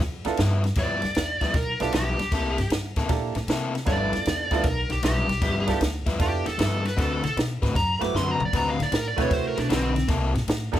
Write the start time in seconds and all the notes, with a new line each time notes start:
0.00 F2, muted overdriven electric guitar stroke, snare
0.25 E2 B3 D4 E4 F4 A4, muted overdriven electric guitar stroke, snare, ride
0.37 G2 F3 B3 E4, snare, ride
0.64 muted overdriven electric guitar stroke, snare, ride
0.75 G2 F3 B3 E4 D5, kick, snare, ride
1.02 F2, muted overdriven electric guitar stroke, snare, ride
1.15 E2, muted overdriven electric guitar stroke, snare, ride
1.41 D2 G2 F3 B3 E4, kick, snare, ride
1.54 B1 A#4, muted overdriven electric guitar stroke, kick, snare, ride
1.80 B1 B3 D4 E4 F4 G4 A4, muted overdriven electric guitar stroke, snare, ride
1.92 B1 G2 F3 B3 E4 G4, snare, ride
2.19 D2, muted overdriven electric guitar stroke, snare, ride
2.32 C2 C3 A#3 E4 A4, kick, snare, ride
2.58 G2, muted overdriven electric guitar stroke, snare, ride
2.70 G2, muted overdriven electric guitar stroke, snare, ride
2.96 A2 C3 A#3 E4 A4, kick, snare, ride
3.08 A#2 A#3 D4 E4 G4 A4, muted overdriven electric guitar stroke, kick, snare, ride
3.35 A2, muted overdriven electric guitar stroke, snare, ride
3.47 C3 A#3 E4 A4, snare, ride
3.75 muted overdriven electric guitar stroke, snare, ride
3.85 G1 G2 F3 B3 D4 E4 F4 A4 D5, kick, snare, ride
4.13 F2, muted overdriven electric guitar stroke, snare, ride
4.26 E2, muted overdriven electric guitar stroke, snare, ride
4.51 D2 G2 F3 B3 D4 E4 F4 A4, kick, snare, ride
4.63 B1 A#4, muted overdriven electric guitar stroke, kick, snare, ride
4.89 B1 G4, muted overdriven electric guitar stroke, snare, ride
5.03 B1 G2 F3 B3 E4 G4, snare, ride
5.29 B1, muted overdriven electric guitar stroke, snare, ride
5.41 G1 G2 F3 B3 E4, kick, snare, ride
5.66 D2 B3 D4 E4 F4 A4, muted overdriven electric guitar stroke, snare, ride
5.81 D2, muted overdriven electric guitar stroke, snare, ride
6.06 E2 G2 F3 B3 E4, kick, snare, ride
6.19 F2 B3 D4 E4 F4 G4 A4, muted overdriven electric guitar stroke, kick, snare, ride
6.46 E2 A4, muted overdriven electric guitar stroke, snare, ride
6.58 G2 F3 B3 E4, snare, ride
6.83 B4, muted overdriven electric guitar stroke, snare, ride
6.97 D2 D3 C4 F#4 A4 B4, kick, snare, ride
7.23 C3 A4, muted overdriven electric guitar stroke, snare, ride
7.36 B2, muted overdriven electric guitar stroke, snare, ride
7.62 A2 D3 C4 F#4 B4, kick, snare, ride
7.75 F#2 A#5, muted overdriven electric guitar stroke, kick, snare, ride
7.99 F#2 A3 C4 E4 F#4 B4 D6, muted overdriven electric guitar stroke, snare, ride
8.14 F#2 D3 C4 F#4 B4 C6, snare
8.27 A#5, mid tom
8.40 F#2, muted overdriven electric guitar stroke, floor tom
8.45 D5
8.53 D2 D3 C4 F#4 B4 A#5, kick, snare, ride
8.70 F5
8.79 A2, muted overdriven electric guitar stroke, snare, ride
8.83 D5
8.92 A2 A#4, muted overdriven electric guitar stroke, snare, ride
9.08 D5
9.16 B2 D3 A3 C4 E4 F#4 B4, kick, snare, ride
9.21 C#5
9.30 C3 C5, muted overdriven electric guitar stroke, kick, snare, ride
9.48 A#4
9.57 B2 D4, muted overdriven electric guitar stroke, snare, ride
9.69 B1 D3 C4 F#4 B4, snare, ride
9.95 muted overdriven electric guitar stroke, snare, ride
10.08 C2 C3 A#3 E4 A4, kick, snare, ride
10.34 A#2, muted overdriven electric guitar stroke, snare, ride
10.47 A2, muted overdriven electric guitar stroke, snare, ride
10.72 G2 C3 A#3 D4 E4 G4 A4, kick, snare, ride